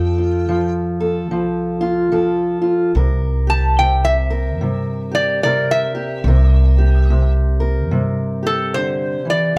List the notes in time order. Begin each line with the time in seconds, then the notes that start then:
Already playing: F2 F3 A4 G5
0.18 F4
0.49 F3
1.00 A4
1.30 C2 F3
1.81 F4
2.12 F3 A4
2.62 F4
2.95 C2 C3 A#4
3.47 G4 A5
3.79 C3 G5
4.05 E5
4.30 A#4
4.61 G2 C3
5.11 G4 D5
5.43 C3 A#4 D5
5.71 E5
5.95 G4
6.24 C2 C3 A#4
6.78 G4
7.10 C3
7.60 A#4
7.91 G2 C3
8.43 G4 A4
8.74 D3 C5
9.25 E3
9.30 D5